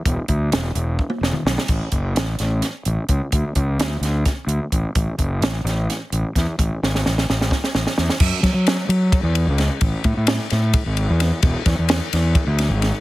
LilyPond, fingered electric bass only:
\new Staff \with { instrumentName = "Fingered electric bass" } { \clef bass \time 7/8 \key a \major \tempo 4 = 129 e,,16 r16 d,8 e,,8 e,,8 r8 e,,16 r16 b,,16 r16 | a,,16 r16 fis,,8 a,,8 a,,8 r8 a,,16 r16 cis,16 r16 | d,16 r16 cis,8 d,8 d,8 r8 d,16 r16 a,,16 r16 | a,,16 r16 fis,,8 a,,8 a,,8 r8 a,,16 r16 e,16 r16 |
a,,16 r16 gis,,8 a,,8 a,,8 r8 a,,16 r16 e,16 r16 | fis,16 r16 fis16 fis8 r16 fis8 r16 e,8 cis,8 r16 | a,,16 r16 a,16 a,8 r16 a,8 r16 gis,,8 e,8 r16 | e,,16 r16 e,16 e,8 r16 e,8 r16 d,8 gis,,8 r16 | }